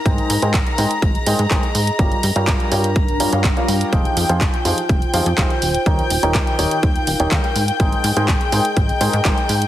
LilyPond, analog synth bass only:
\new Staff \with { instrumentName = "Analog synth bass" } { \clef bass \time 4/4 \key aes \major \tempo 4 = 124 aes,,16 r16 aes,16 aes,16 aes,,16 r16 aes,16 r16 aes,,16 r16 aes,16 aes,16 aes,,16 r16 aes,16 r16 | g,,16 r16 g,16 g,16 g,,16 r16 g,8 g,,8 g,16 g,16 g,,16 r16 g,16 r16 | f,,16 r16 f,16 f,16 f,,16 r16 f,16 r16 f,,16 r16 f,16 f,16 f,,16 r16 ees,,16 r16 | ees,16 r16 ees,,16 ees,,16 ees,16 r16 ees,,16 r16 ees,16 r16 ees,,16 ees,,16 ees,16 r16 aes,16 r16 |
aes,,16 r16 aes,16 aes,16 aes,,16 r16 aes,16 r16 aes,,16 r16 aes,16 aes,16 aes,,16 r16 aes,16 r16 | }